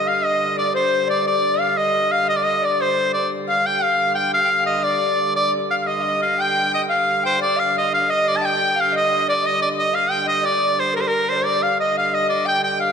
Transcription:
Already playing: G2 D3
0.06 F5
0.22 D#5
0.56 D5
0.73 C5
1.07 D5
1.25 D5
1.59 F5
1.77 D#5
2.11 F5
2.28 D#5
2.36 D5
2.40 D#5
2.61 D5
2.81 C5
3.13 D5
3.31 G2 D3
3.47 F5
3.66 G5
3.82 F5
4.14 G5
4.34 F5
4.43 G5
4.51 F5
4.66 D#5
4.83 D5
5.36 D5
5.70 F5
5.82 F5
5.86 D#5
5.99 D#5 F5
6.22 F5
6.38 G5
6.74 D#5
6.89 F5
7.22 C5 G5
7.40 G2 D3 D5
7.56 F5
7.78 D#5
7.92 F5
8.08 D#5
8.28 D5
8.37 A5
8.41 G5
8.76 F5
8.80 F5
8.92 D#5
9.28 D5
9.42 D#5
9.62 D5
9.79 D#5
9.93 F5
10.09 G5
10.26 D#5
10.43 D5
10.79 C5
10.93 A4 A#4
11.01 A#4 C5
11.06 A#4
11.29 C5 D5
11.37 C5
11.45 G2 D3 D5
11.62 F5
11.80 D#5
11.97 F5
12.13 D#5
12.29 D5
12.46 G5
12.64 G5
12.80 F5

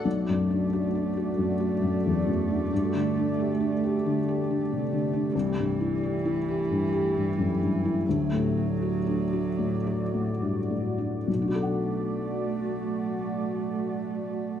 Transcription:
0.05 B1 A3 F#4 D5
0.29 F#2
0.50 D4
0.73 F#4
0.95 D4
1.17 F#4
1.38 F#2
1.60 F#4
1.82 F#2
2.06 E2
2.27 F#2
2.51 D4
2.71 G2 G4
2.95 D3
3.17 D4
3.39 G4
3.61 D4
3.84 G4
4.06 D3
4.29 G4
4.50 D3
4.72 C3
4.93 D3
5.13 D4
5.31 C2 E3 A3 E5
5.59 G2
5.81 E4
6.03 G4
6.25 E4
6.48 G4
6.70 G2
6.92 G4
7.16 G2
7.38 F#2
7.61 G2
7.85 E4
8.05 D2 F#3 F#4 D5
8.33 A2
8.57 D4
8.82 F#4
9.06 D4
9.33 F#4
9.59 A2
9.87 F#4
10.14 A2
10.42 G2
10.70 A2
10.98 D4
11.27 B1 A3 F#4 D5
11.34 B2
11.42 D4
11.48 F#4
11.55 A4
11.63 F#5

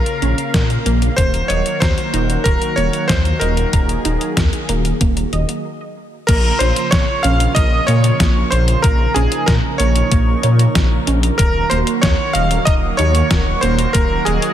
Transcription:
Already playing: C#3 A#3 A#4 F5
0.06 closed hi-hat
0.22 A#1 C#4, closed hi-hat
0.38 closed hi-hat
0.54 A#2 A#4, kick, snare, closed hi-hat
0.70 closed hi-hat
0.86 A#1 A#3, closed hi-hat
1.02 closed hi-hat
1.17 D#1 D#3 F#3 A#3 F#4 A#4 C5, kick, closed hi-hat
1.34 closed hi-hat
1.48 D#1 C#5 D#5, closed hi-hat
1.66 closed hi-hat
1.80 D#2 C5 A#5, kick, snare, closed hi-hat
1.98 closed hi-hat
2.13 D#1 D#4, closed hi-hat
2.30 closed hi-hat
2.44 D#1 A#4, kick, closed hi-hat
2.62 closed hi-hat
2.76 D#1 A#3 C#5, closed hi-hat
2.93 closed hi-hat
3.08 D#2 A#3 C5, kick, snare, closed hi-hat
3.25 closed hi-hat
3.40 D#1 A#4 D#5, closed hi-hat
3.57 closed hi-hat
3.73 D#1 G#4 A#5, kick, closed hi-hat
3.89 closed hi-hat
4.05 D#1 D#4, closed hi-hat
4.21 closed hi-hat
4.37 D#2 A#4, kick, snare, closed hi-hat
4.53 closed hi-hat
4.69 D#1 A#3, closed hi-hat
4.85 closed hi-hat
5.01 D#1 A#3, kick, closed hi-hat
5.17 closed hi-hat
5.33 D#1 D#5, closed hi-hat
5.49 closed hi-hat
6.27 A#1 C#3 F3 A#3 F4 A#4 A#5, kick, closed hi-hat, crash
6.59 A#1 C5 C#5 C6, closed hi-hat
6.76 closed hi-hat
6.91 A#2 C#5 A#5 C#6, kick, snare, closed hi-hat
7.23 A#1 C#4 F5 F6, closed hi-hat
7.40 closed hi-hat
7.55 A#1 A#4 D#5 D#6, kick, closed hi-hat
7.87 A#2 A#3 C#5 C#6, closed hi-hat
8.04 closed hi-hat
8.20 A#1 A#3, kick, snare, closed hi-hat
8.50 A#1 C5 C#5 C6, closed hi-hat
8.68 closed hi-hat
8.82 A#1 D#4 A#4 A#5, kick, closed hi-hat
9.14 A#1 C#4 G#4 G#5, closed hi-hat
9.32 closed hi-hat
9.46 A#2 A#4 A#5, kick, snare, closed hi-hat
9.78 A#1 A#3 C#5 C#6, closed hi-hat
9.96 closed hi-hat
10.12 A#1 A#3, kick, closed hi-hat
10.43 A#2 C#5, closed hi-hat
10.59 closed hi-hat
10.75 A#1 A#5, kick, snare, closed hi-hat
11.07 A#1 C#4, closed hi-hat
11.23 closed hi-hat
11.38 D#1 D#3 F#3 F#4 A#4 A#5, kick, closed hi-hat
11.70 D#1 A#3 C5 C6, closed hi-hat
11.87 closed hi-hat
12.01 D#2 A#3 C#5 C#6, kick, snare, closed hi-hat
12.33 D#1 D#5 F5 F6, closed hi-hat
12.51 closed hi-hat
12.65 D#1 D#5 A#5 D#6, kick, closed hi-hat
12.97 D#2 D#4 C#5 C#6, closed hi-hat
13.15 closed hi-hat
13.31 D#1 A#4, kick, snare, closed hi-hat
13.61 D#1 A#3 C5 C6, closed hi-hat
13.79 closed hi-hat
13.93 D#1 A#3 A#4 A#5, kick, closed hi-hat
14.25 D#1 G#4 D#5 G#5, closed hi-hat
14.42 closed hi-hat

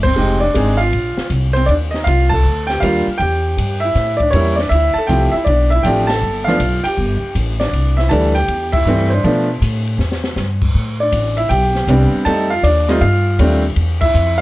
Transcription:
Already playing: G1
0.03 C4 C5, kick, crash
0.16 F1 G#3 C4 D#4 G4
0.40 D4 D5
0.54 G#1 G#3 C4 D#4 G#4, kick, hi-hat pedal, ride
0.77 F4 F5
0.92 A#1, kick, ride
1.18 muted upright bass stroke, snare
1.30 C2, kick, hi-hat pedal, ride
1.53 C4 C5, ride
1.66 D#2 D4 D5, kick, ride
1.91 D#5, snare
1.95 D#4
2.04 C2 F4 F5, kick, hi-hat pedal, ride
2.29 A4 A5, kick, crash
2.44 D2
2.67 G5, snare, ride
2.71 G4
2.80 D#2 G3 A#3 D4 F4 F5, kick, hi-hat pedal, ride
3.07 muted upright bass stroke
3.18 E2 G5, kick, ride
3.22 G4
3.57 G2, kick, hi-hat pedal, ride
3.80 E5
3.85 E4
3.95 A2, kick, snare, ride
4.17 D5, kick, ride
4.22 D4
4.30 E2 G3 A#3 C#4 C#5, kick, hi-hat pedal, ride
4.35 E4
4.56 D5, snare
4.61 D4
4.69 D2 E5, kick, ride
4.74 E4
4.94 A5, muted upright bass stroke
4.98 A4
5.07 C2 F3 A3 C4 E4 G5, kick, hi-hat pedal, ride
5.11 G4
5.32 E5
5.36 E4
5.45 B1 D4 D5, kick, ride
5.70 E5, ride
5.75 E4
5.83 A1 F3 A3 C4 D4 G5, kick, hi-hat pedal, ride
5.87 G4
6.07 A5, snare, ride
6.12 A4
6.22 G1
6.44 F3 A3 F5, snare
6.49 B3 D4 F4
6.59 B1, kick, hi-hat pedal, ride
6.84 G4 G5, muted upright bass stroke, ride
6.97 G1, kick
7.22 muted upright bass stroke
7.35 A1, kick, hi-hat pedal, ride
7.60 D4 D5, snare, ride
7.73 C2, kick, ride
7.97 E5, snare
8.01 E4
8.09 D2 E3 G3 A3 D4 A4 A5, kick, hi-hat pedal, ride
8.35 G4 G5, ride
8.48 E2, kick, ride
8.72 E4 E5, kick, crash
8.85 G2 E3 G3 A3 C4, hi-hat pedal
9.10 D4 C5
9.24 B2 F3 A3 B3 D4, kick, ride
9.61 A2, kick, hi-hat pedal, ride
9.87 ride
9.98 E2, snare
10.12 snare
10.24 snare
10.36 G2, snare, hi-hat pedal
10.62 kick, crash
10.74 A2, kick
11.00 D4 D5
11.12 A1, kick, hi-hat pedal, ride
11.37 E4 E5, ride
11.49 B1 G4 G5, kick, ride
11.75 snare
11.87 C2 G3 B3 C4 D4, kick, hi-hat pedal, ride
12.12 muted upright bass stroke
12.25 F2 G3 A3 C4 D#4 A4 A5, kick, ride
12.50 F4 F5
12.63 D#2 D4 D5, kick, hi-hat pedal, ride
12.88 G3 A3 C4 D#4 F4 D#5, snare, ride
13.01 G2 F4 F5, kick, ride
13.39 D#2 G3 A3 C4 D4, kick, hi-hat pedal, ride
13.76 E2, kick, ride
14.01 E4 E5, kick, crash
14.14 F2, hi-hat pedal
14.38 F5

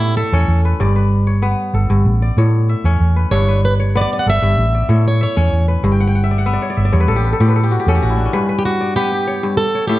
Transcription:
Already playing: A2 B3 E4 A4 C#5 D5
0.17 A4 E5
0.32 E2 C#4 C#5
0.48 E2
0.65 B4
0.80 G1 G2 D5
0.96 B4
1.27 C#5
1.42 B3 B4
1.73 G1 A4
1.90 G1 G2
2.05 A1
2.22 D5
2.37 A2 C#5
2.69 E5
2.84 E2 C#4 C#5
3.00 E2
3.16 B4
3.31 G1 G2 D4 C#5
3.48 B4
3.65 B4
3.80 C#5
3.95 B3 B4 D5
4.01 D5
4.13 D5
4.19 F#5
4.26 G1 A4 E5
4.42 G1 G2
4.57 A1
4.75 D5
4.89 A2 C#5
5.08 C#5
5.21 C#5 E5
5.37 E2 C#4 C#5
5.52 E2
5.68 B4
5.83 G1 G2
5.92 G5
6.00 F#5
6.07 G5
6.15 F#5
6.24 E5
6.31 D5
6.38 F#5
6.46 B3 E5
6.53 D5
6.62 C#5
6.70 D5
6.77 G1 E5
6.85 D5
6.92 E2 G2 C#5
7.00 B4
7.08 A1 A4
7.16 G4
7.24 B4
7.33 A4
7.40 A2 G4
7.48 B4
7.56 A4
7.63 G4
7.71 F#4
7.80 G4
7.87 E2 C#4 A4
7.95 G4
8.02 A1 F#4
8.10 E4
8.17 D4
8.25 C#4
8.33 G2 B4
8.49 B4
8.59 G4
8.65 F#4
8.81 D5
8.96 B3 G4 B4
9.12 G4
9.27 C#5
9.43 G2
9.57 A4
9.75 C#5
9.88 A2 G4 E5

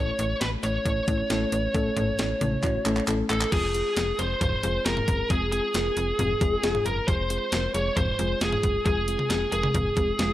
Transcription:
Already playing: A1 A3 C#4 E4 A4 C#5
0.19 A1 A3 C#4 E4 A4, closed hi-hat
0.41 A1 A3 C#4 E4 A4 B4, snare, closed hi-hat
0.63 A1 A3 C#4 E4 A4 C#5, closed hi-hat
0.86 A1 A3 C#4 E4 A4, kick, closed hi-hat
1.08 A1 A3 C#4 E4 A4, kick, closed hi-hat
1.30 A1 A3 C#4 E4 A4, snare, closed hi-hat
1.52 A1 A3 C#4 E4 B4, closed hi-hat
1.74 A1 A3 C#4 E4 A4, kick, closed hi-hat
1.97 A1 A3 C#4 E4 A4, closed hi-hat, mid tom
2.19 A1 A3 C#4 E4 A4, snare, closed hi-hat
2.41 A1 A3 C#4 E4 A4, closed hi-hat, mid tom
2.63 A1 A3 C#4 E4 F#4, kick, clap, closed hi-hat
2.86 A1 A3 C#4 E4 A4, clap, closed hi-hat
2.97 clap
3.08 A1 A3 C#4 E4 A4, clap, closed hi-hat
3.30 A1 A3 C#4 E4 A4, clap, closed hi-hat
3.41 clap
3.52 F1 G#3 C4 F4 G#4, kick, closed hi-hat, crash
3.74 G#3 C4 F4 G#4, closed hi-hat
3.97 F1 G#3 C4 F4 G#4, snare, closed hi-hat
4.19 F1 G#3 C4 F4 G#4 C5, closed hi-hat
4.41 F1 G#3 C4 F4 G#4 C5, kick, closed hi-hat, mid tom
4.63 F1 G#3 C4 F4 G#4, closed hi-hat
4.86 F1 G#3 C4 F4 G#4 A#4, snare, closed hi-hat
4.97 mid tom
5.08 F#1 G#3 C4 F4 G#4, kick, closed hi-hat
5.30 F1 G#3 C4 F4 G#4, kick, closed hi-hat
5.52 G#3 C4 F4 G#4, closed hi-hat
5.74 F1 G#3 C4 F4 A#4, snare, closed hi-hat
5.97 F1 G#3 C4 F4 G#4, closed hi-hat
6.19 F1 G#3 C4 F4 G#4, closed hi-hat, mid tom
6.41 F1 G#3 C4 F4 G#4, kick, closed hi-hat
6.63 F1 G#3 C4 F4 G#4, snare, closed hi-hat
6.75 mid tom
6.86 F#1 G#3 C4 F4 A#4, closed hi-hat
7.08 F1 G#3 C4 F4 G#4 C5, kick, closed hi-hat
7.30 G#3 C4 F4 G#4, closed hi-hat
7.52 F1 G#3 C4 F4 A#4, snare, closed hi-hat
7.74 F1 G#3 C4 F4 G#4 C#5, closed hi-hat
7.97 F1 G#3 C4 F4 G#4 C5, kick, closed hi-hat, mid tom
8.19 F1 G#3 C4 F4 G#4, closed hi-hat
8.41 F1 G#3 C4 F4 G#4, snare, closed hi-hat
8.53 mid tom
8.63 F#1 G#3 C4 F4 G#4, kick, closed hi-hat
8.86 F1 G#3 C4 F4 G#4, kick, closed hi-hat
9.08 G#3 C4 F4 G#4, closed hi-hat
9.19 mid tom
9.30 F1 G#3 C4 F4 G#4, snare, closed hi-hat
9.52 F1 G#3 C4 F4 G#4 A#4, closed hi-hat
9.63 mid tom
9.74 F1 G#3 C4 F4 G#4, kick, closed hi-hat, mid tom
9.97 F1 G#3 C4 F4 G#4, kick, closed hi-hat
10.19 F1 G#3 C4 F4 G#4, snare, closed hi-hat

